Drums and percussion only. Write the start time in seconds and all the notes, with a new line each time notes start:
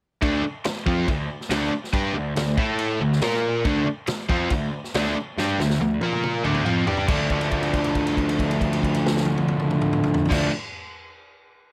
0.22 kick, crash
0.64 snare, crash
0.87 kick
1.08 kick, crash
1.41 snare
1.51 snare, crash
1.84 snare
1.93 kick, crash
2.36 snare, crash
2.58 kick
2.79 crash
3.12 snare
3.22 snare, crash
3.65 kick, crash
4.07 snare, crash
4.30 kick
4.50 kick, crash
4.84 snare
4.94 snare, crash
5.38 snare
5.60 snare
5.70 snare
5.80 high tom
6.01 high tom
6.13 mid tom
6.24 mid tom
6.45 mid tom
6.55 mid tom
6.66 mid tom
6.87 floor tom
6.97 floor tom
7.08 kick, crash
7.30 kick, crash
7.41 crash
7.51 kick, crash
7.63 crash
7.74 kick, crash
7.84 crash
7.95 kick, crash
8.07 crash
8.17 kick, crash
8.29 crash
8.39 kick, crash
8.51 crash
8.61 kick, crash
8.73 crash
8.83 kick, crash
8.94 crash
9.07 snare
9.17 snare
9.26 high tom
9.38 high tom
9.48 high tom
9.60 mid tom
9.71 mid tom
9.82 mid tom
9.93 mid tom
10.04 mid tom
10.14 floor tom
10.25 floor tom
10.31 kick, snare, crash